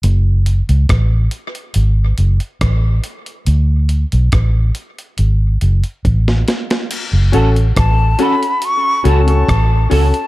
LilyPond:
<<
  \new Staff \with { instrumentName = "Flute" } { \time 4/4 \key fis \minor \tempo 4 = 70 r1 | r1 | r4 a''8 b''8 cis'''8 a''4 a''8 | }
  \new Staff \with { instrumentName = "Clean electric guitar" } { \time 4/4 \key fis \minor r1 | r1 | r8 <cis' fis' a'>8 r8 <cis' fis' a'>8 r8 <cis' fis' a'>8 r8 <cis' fis' a'>8 | }
  \new Staff \with { instrumentName = "Upright piano" } { \time 4/4 \key fis \minor r1 | r1 | r8 <cis' fis' a'>16 r8. <cis' fis' a'>16 r8. <cis' fis' a'>16 <cis' fis' a'>16 r8 <cis' fis' a'>16 r16 | }
  \new Staff \with { instrumentName = "Fingered electric bass" } { \clef bass \time 4/4 \key fis \minor fis,,8. cis,16 a,,8 r8 gis,,8 fis,,16 r16 a,,8 r8 | d,8. b,,16 a,,8 r8 gis,,8 fis,,16 r16 a,,8 r8 | r16 fis,,16 a,,8 a,,8 r4 cis,8 a,,8 cis,16 r16 | }
  \new DrumStaff \with { instrumentName = "Drums" } \drummode { \time 4/4 hh8 hh16 hh16 <hh bd ss>8 hh16 hh16 hh8 hh16 hh16 <hh bd ss>8 hh16 hh16 | hh8 hh16 hh16 <hh bd ss>8 hh16 hh16 hh8 hh16 hh16 <hh bd>16 sn16 <hh sn>16 <hh sn>16 | <cymc hh>8 hh16 hh16 <hh bd ss>8 hh16 hh16 hh8 hh16 hh16 <hh bd ss>8 hho16 hh16 | }
>>